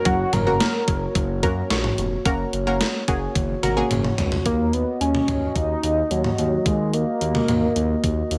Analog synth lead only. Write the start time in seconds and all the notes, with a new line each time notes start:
0.05 F#4
0.33 A#4
4.46 A#3
4.73 B3
5.01 C#4
5.56 D#4
6.11 F#3
6.66 G#3
6.94 A#3